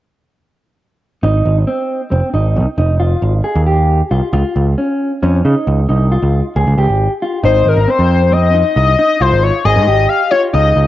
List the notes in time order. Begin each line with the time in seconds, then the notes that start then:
1.23 G#1 D#4
1.45 G#1
1.67 C4
2.11 F1 C4
2.34 G#1 D#4
2.56 C2
2.78 F1 D#4
3.00 F4
3.22 G#1
3.44 G#4
3.55 D#2
3.67 G4
4.11 C2 F4
4.33 C#2 F4
4.56 C#2
4.78 C#4
5.23 F2 C#4
5.45 C#3 D#4
5.67 C#2
5.89 C2 D#4
6.12 F4
6.22 C#2
6.56 C#2 G#4
6.67 C#2
6.78 C#2 G4
6.89 G#1
7.22 F4
7.44 G#1 D#4 C5
7.66 G#1 A#4
7.76 G#1
7.88 C4 C5
7.99 F2
8.32 C4 D#5
8.54 D#4
8.76 C2 D#5
8.98 D#4 D#5
9.21 C2 F4 C5
9.32 G#1
9.43 C#5
9.65 G#1 G#4 D#5
9.76 G#2
9.87 G#1 G4 D#5
10.09 F5
10.31 F4 C#5
10.53 C#2 D#4 D#5
10.76 C#2